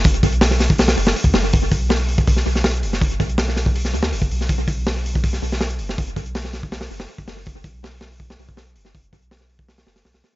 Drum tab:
HH |oxoxo-o-ooo-o-o-|o-o-o-o-o-o-oxo-|oxoxo-o-o-o-o-o-|o-o-o-o-o-o-oxo-|
SD |----ooo-oo-o--oo|----o----o-oo--o|----ooo--o-o---o|----o----o-oo--o|
BD |o-o----o-----o--|o-o----oo-------|o-o----o-----o--|o-o----oo-------|

HH |oxoxo-o-ooo-o-o-|o-o-o--o--o-oxo-|oxoxo-o-ooooooo-|
SD |----ooo-oo-o--oo|----o-o--o--o--o|----oo--ooooooo-|
BD |o-o----o-----o--|o-o-----o--o----|o-o----o--------|